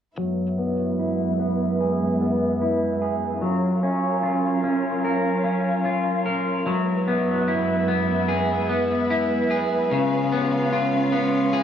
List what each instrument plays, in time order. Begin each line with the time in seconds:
0.17 string section F#2 G#3 B3 E4 B4 E5, clean electric guitar F#3
0.58 clean electric guitar B3
0.99 clean electric guitar E4
1.40 clean electric guitar B3
1.81 clean electric guitar G#4
2.21 clean electric guitar B3
2.62 clean electric guitar E4
3.02 clean electric guitar G#4
3.42 clean electric guitar F#3, string section F#3 C#4 F4 A#4 F5
3.83 clean electric guitar C#4
4.23 clean electric guitar F4
4.64 clean electric guitar C#4
5.05 clean electric guitar A#4
5.44 clean electric guitar C#4
5.85 clean electric guitar F4
6.26 clean electric guitar A#4
6.65 string section F#2 G#3 B3 E4 B4 E5, clean electric guitar F#3
7.08 clean electric guitar B3
7.48 clean electric guitar E4
7.88 clean electric guitar B3
8.28 clean electric guitar G#4
8.69 clean electric guitar B3
9.10 clean electric guitar E4
9.51 clean electric guitar G#4
9.90 clean electric guitar C#3, string section C#4 F4 F5
10.32 clean electric guitar B3
10.72 clean electric guitar F4
11.12 clean electric guitar B3
11.53 clean electric guitar G#4